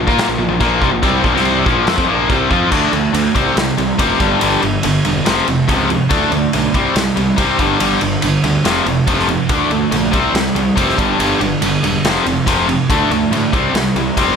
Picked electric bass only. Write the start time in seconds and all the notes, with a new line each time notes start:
0.07 A#2
0.28 A#1
0.38 A#1
0.49 A#1
0.60 A#1
0.82 C2
0.91 A#1
1.03 C2
1.24 A#1
1.34 C2
1.66 A#1
1.88 F2
1.98 F2
2.09 A#1
2.30 C2
2.51 F2
2.72 D2
2.93 D2
3.14 D2
3.35 C2
3.57 C2
3.78 C2
3.99 F1
4.20 G1
4.42 G1
4.63 G1
4.85 G1
5.06 E1
5.27 F1
5.48 F1
5.69 C#2
6.11 D2
6.32 D2
6.54 B1
6.74 C2
6.96 C2
7.17 C2
7.38 C2
7.59 G1
7.81 G1
8.02 G1
8.23 G1
8.44 D2
8.65 F1
8.86 F1
9.07 F1
9.50 D2
9.70 D2
9.91 A#1
10.13 C2
10.33 C2
10.55 C2
10.77 F1
10.98 G1
11.19 G1
11.40 G1
11.62 G1
11.83 E1
12.04 F1
12.26 F1
12.47 F1
12.90 D2
13.10 D2
13.31 A2
13.53 C2
13.74 C2
13.96 C2
14.17 F1